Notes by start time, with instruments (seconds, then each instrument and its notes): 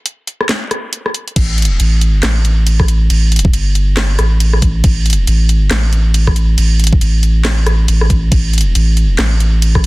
0.06 closed hi-hat
0.27 closed hi-hat
0.41 cross-stick
0.49 snare, clap, closed hi-hat
0.71 cross-stick, closed hi-hat
0.93 closed hi-hat
1.06 cross-stick
1.14 closed hi-hat
1.28 closed hi-hat
1.36 sub bass A1, kick, closed hi-hat, crash
1.58 closed hi-hat
1.62 closed hi-hat
1.65 closed hi-hat
1.80 sub bass A1, closed hi-hat, crash
2.01 closed hi-hat
2.23 sub bass A1, snare, clap, closed hi-hat, crash
2.45 closed hi-hat
2.67 closed hi-hat, crash
2.80 kick, cross-stick
2.88 closed hi-hat
3.10 sub bass A1, closed hi-hat, crash
3.32 closed hi-hat
3.36 closed hi-hat
3.39 closed hi-hat
3.45 kick
3.53 sub bass G1, closed hi-hat, crash
3.75 closed hi-hat
3.97 snare, clap, closed hi-hat, crash
4.19 sub bass A1, cross-stick, closed hi-hat
4.40 closed hi-hat, crash
4.53 cross-stick
4.62 kick, closed hi-hat
4.84 sub bass A1, kick, closed hi-hat, crash
5.06 closed hi-hat
5.10 closed hi-hat
5.13 closed hi-hat
5.27 sub bass A1, closed hi-hat, crash
5.49 closed hi-hat
5.71 sub bass A1, snare, clap, closed hi-hat, crash
5.93 closed hi-hat
6.14 closed hi-hat, crash
6.27 kick, cross-stick
6.36 closed hi-hat
6.58 sub bass A1, closed hi-hat, crash
6.80 closed hi-hat
6.84 closed hi-hat
6.87 closed hi-hat
6.93 kick
7.01 sub bass A1, closed hi-hat, crash
7.23 closed hi-hat
7.45 snare, clap, closed hi-hat, crash
7.66 cross-stick, closed hi-hat
7.88 sub bass A1, closed hi-hat, crash
8.01 cross-stick
8.10 kick, closed hi-hat
8.32 sub bass A1, kick, closed hi-hat, crash
8.53 closed hi-hat
8.58 closed hi-hat
8.61 closed hi-hat
8.75 sub bass A1, closed hi-hat, crash
8.97 closed hi-hat
9.19 sub bass A1, snare, clap, closed hi-hat, crash
9.40 closed hi-hat
9.62 closed hi-hat, crash
9.75 kick, cross-stick